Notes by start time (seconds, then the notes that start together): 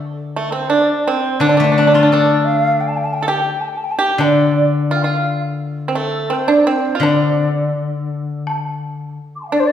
Already playing: D3
0.36 A3 A4
0.52 C4 C5
0.70 D4 D5
1.07 C4 C5
1.40 D3 D4 D5
1.49 D4
1.57 A3 D4
1.64 D4
1.72 D4
1.78 D4
1.87 D4
1.94 D4 F4
2.03 D4
2.12 D4 A4
2.44 F5
2.80 G5
2.88 A5
2.96 G5
3.04 A5
3.13 G5
3.21 A4 A5
3.28 G4 G5
3.51 G5
3.60 A5
3.67 G5
3.77 A5
3.83 G5
3.91 A5
3.99 G4 G5
4.18 D3 D4 D5
4.90 F4 F5
4.96 G5
5.04 F4 F5
5.88 C4
5.95 A3 A4
6.30 C4 C5
6.48 D4
6.52 D5
6.67 C4 C5
6.95 F4
7.00 D3 D4 D5
8.47 high woodblock
9.35 C6 D6
9.41 G5 A5
9.48 F5
9.52 D4 D5
9.59 C5
9.66 D5